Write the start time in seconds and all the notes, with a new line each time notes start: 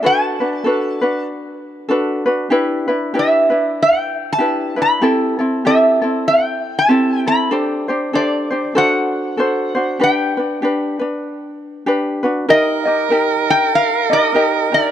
0.03 D4 F#4 A4 B4 A5
0.40 D4 F#4 B4
0.64 D4 F#4 A4 B4
1.01 D4 F#4 B4
1.89 D4 F#4 A4 B4
2.26 D4 F#4 B4
2.50 D4 E4 G4 B4
2.88 D4 E4 B4
3.14 D4 E4 G4 B4
3.19 E5
3.50 D4 E4 B4
3.82 G5
4.33 A5
4.38 D4 E4 G4 B4
4.76 D4 E4 B4
4.82 B5
5.01 C4 E4 G4 A4
5.39 C4 E4 A4
5.65 C4 E4 G4 A4 E5
6.02 C4 E4 A4
6.28 G5
6.79 A5
6.89 C4 E4 G4 A4
7.27 C4 E4 A4 B5
7.51 D4 G4 A4 C5
7.88 D4 G4 C5
8.13 D4 G4 A4 C5 D5
8.50 D4 G4 C5
8.75 D4 F#4 A4 C5 F#5
9.37 D4 F#4 A4 C5
9.75 D4 F#4 C5
10.00 D4 G4 B4 G5
10.37 D4 B4
10.62 D4 G4 B4
10.99 D4 B4
11.86 D4 G4 B4
12.23 D4 F#4 B4
12.48 D#4 G4 A#4 D#5
12.85 D#4 G4 D#5
13.10 D#4 G4 A#4 D#5
13.50 G5
13.75 F5
14.10 D#4 G4 D#5
14.34 D#4 G4 A#4 D#5
14.72 D#4 G4 D5